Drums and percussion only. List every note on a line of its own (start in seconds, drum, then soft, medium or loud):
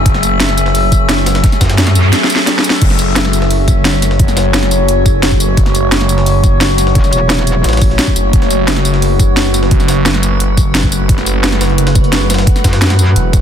0.06 kick loud
0.06 closed hi-hat medium
0.06 closed hi-hat loud
0.14 snare soft
0.23 closed hi-hat medium
0.23 tambourine medium
0.40 snare loud
0.40 closed hi-hat medium
0.49 snare medium
0.57 closed hi-hat medium
0.57 tambourine medium
0.66 snare medium
0.75 closed hi-hat medium
0.75 open hi-hat medium
0.92 kick loud
0.92 closed hi-hat medium
0.92 tambourine medium
1.09 snare loud
1.09 closed hi-hat medium
1.09 closed hi-hat loud
1.18 snare soft
1.26 snare loud
1.26 snare soft
1.26 closed hi-hat medium
1.26 tambourine medium
1.35 snare loud
1.35 closed hi-hat medium
1.44 kick loud
1.44 snare loud
1.44 closed hi-hat medium
1.44 closed hi-hat loud
1.52 snare soft
1.52 closed hi-hat soft
1.52 tambourine soft
1.61 kick medium
1.61 snare loud
1.61 closed hi-hat medium
1.61 tambourine medium
1.70 snare loud
1.70 closed hi-hat medium
1.78 snare loud
1.78 closed hi-hat medium
1.87 snare loud
1.87 snare medium
1.87 closed hi-hat medium
1.95 closed hi-hat medium
1.95 tambourine medium
2.13 snare medium
2.13 closed hi-hat medium
2.13 closed hi-hat loud
2.24 snare medium
2.30 closed hi-hat medium
2.30 tambourine medium
2.36 snare medium
2.47 snare medium
2.47 snare loud
2.47 closed hi-hat loud
2.47 closed hi-hat medium
2.56 snare medium
2.56 closed hi-hat soft
2.64 closed hi-hat medium
2.64 tambourine medium
2.70 snare loud
2.70 tambourine soft
2.82 kick loud
2.82 closed hi-hat loud
2.82 closed hi-hat medium
2.82 crash medium
2.90 snare soft
2.99 closed hi-hat medium
2.99 tambourine medium
3.16 snare loud
3.16 closed hi-hat loud
3.16 closed hi-hat medium
3.25 snare medium
3.33 closed hi-hat medium
3.33 tambourine medium
3.42 snare medium
3.51 closed hi-hat loud
3.51 open hi-hat medium
3.68 kick loud
3.68 closed hi-hat medium
3.68 tambourine medium
3.85 snare loud
3.85 closed hi-hat loud
3.94 snare soft
4.02 snare soft
4.02 closed hi-hat medium
4.02 tambourine medium
4.11 snare medium
4.19 kick loud
4.19 closed hi-hat medium
4.19 closed hi-hat loud
4.28 snare soft
4.28 closed hi-hat soft
4.28 tambourine soft
4.37 snare loud
4.37 closed hi-hat medium
4.37 tambourine medium
4.54 snare loud
4.54 closed hi-hat medium
4.54 closed hi-hat loud
4.63 snare medium
4.71 closed hi-hat medium
4.71 tambourine medium
4.88 closed hi-hat medium
5.06 kick loud
5.06 closed hi-hat medium
5.06 tambourine medium
5.23 snare loud
5.23 closed hi-hat medium
5.32 kick medium
5.32 closed hi-hat soft
5.40 closed hi-hat medium
5.40 tambourine medium
5.57 kick loud
5.57 closed hi-hat medium
5.66 snare soft
5.75 closed hi-hat medium
5.75 tambourine medium
5.92 snare loud
5.92 closed hi-hat medium
6.01 snare medium
6.09 closed hi-hat medium
6.09 tambourine medium
6.18 snare medium
6.26 closed hi-hat medium
6.26 open hi-hat medium
6.44 kick loud
6.44 closed hi-hat medium
6.44 tambourine medium
6.61 snare loud
6.61 closed hi-hat medium
6.61 closed hi-hat loud
6.70 snare soft
6.78 snare soft
6.78 closed hi-hat medium
6.78 tambourine medium
6.87 snare medium
6.95 kick loud
6.95 closed hi-hat medium
7.04 snare soft
7.04 closed hi-hat soft
7.04 tambourine soft
7.13 closed hi-hat medium
7.13 tambourine medium
7.30 snare loud
7.30 closed hi-hat medium
7.38 snare medium
7.47 closed hi-hat medium
7.47 tambourine medium
7.64 snare medium
7.64 closed hi-hat medium
7.69 snare medium
7.69 closed hi-hat medium
7.73 snare medium
7.73 closed hi-hat medium
7.77 snare medium
7.77 closed hi-hat medium
7.82 kick loud
7.82 closed hi-hat medium
7.82 open hi-hat medium
7.82 tambourine medium
7.90 snare soft
7.99 snare loud
7.99 closed hi-hat medium
8.07 kick medium
8.16 closed hi-hat medium
8.16 tambourine medium
8.33 kick loud
8.33 closed hi-hat medium
8.42 snare soft
8.51 closed hi-hat medium
8.51 tambourine medium
8.68 snare loud
8.68 closed hi-hat medium
8.68 closed hi-hat loud
8.76 snare medium
8.85 closed hi-hat medium
8.85 tambourine medium
8.94 snare medium
9.02 closed hi-hat medium
9.02 open hi-hat medium
9.20 kick loud
9.20 closed hi-hat medium
9.20 tambourine medium
9.37 snare loud
9.37 closed hi-hat loud
9.37 closed hi-hat medium
9.45 snare soft
9.54 snare soft
9.54 closed hi-hat medium
9.54 tambourine medium
9.63 snare medium
9.71 kick loud
9.71 closed hi-hat medium
9.80 snare soft
9.80 closed hi-hat soft
9.80 tambourine soft
9.88 snare loud
9.88 closed hi-hat medium
9.88 tambourine medium
10.06 snare loud
10.06 closed hi-hat medium
10.14 snare medium
10.23 closed hi-hat medium
10.23 tambourine medium
10.40 closed hi-hat medium
10.57 kick loud
10.57 closed hi-hat medium
10.57 tambourine medium
10.75 snare loud
10.75 closed hi-hat loud
10.75 closed hi-hat medium
10.83 kick medium
10.83 closed hi-hat soft
10.92 closed hi-hat medium
10.92 tambourine medium
11.09 kick loud
11.09 closed hi-hat medium
11.09 closed hi-hat loud
11.18 snare soft
11.26 closed hi-hat medium
11.26 tambourine medium
11.44 snare loud
11.44 closed hi-hat medium
11.44 closed hi-hat loud
11.52 snare medium
11.61 snare loud
11.61 closed hi-hat medium
11.61 tambourine medium
11.70 closed hi-hat soft
11.78 closed hi-hat medium
11.87 snare loud
11.87 closed hi-hat medium
11.95 kick loud
11.95 closed hi-hat medium
11.95 closed hi-hat soft
11.95 tambourine medium
12.04 closed hi-hat medium
12.13 snare loud
12.13 closed hi-hat loud
12.13 closed hi-hat medium
12.21 snare soft
12.30 snare medium
12.30 snare soft
12.30 closed hi-hat medium
12.30 tambourine medium
12.34 snare medium
12.34 closed hi-hat medium
12.38 snare loud
12.38 closed hi-hat medium
12.47 kick loud
12.47 closed hi-hat medium
12.47 closed hi-hat loud
12.56 snare soft
12.56 closed hi-hat soft
12.56 tambourine soft
12.64 kick medium
12.64 snare loud
12.64 closed hi-hat medium
12.64 tambourine medium
12.73 snare loud
12.73 closed hi-hat medium
12.82 snare loud
12.82 closed hi-hat medium
12.82 closed hi-hat loud
12.90 snare loud
12.90 snare medium
12.90 closed hi-hat medium
12.99 closed hi-hat medium
12.99 tambourine medium
13.16 closed hi-hat medium
13.16 closed hi-hat loud
13.33 kick loud
13.33 closed hi-hat medium
13.33 tambourine medium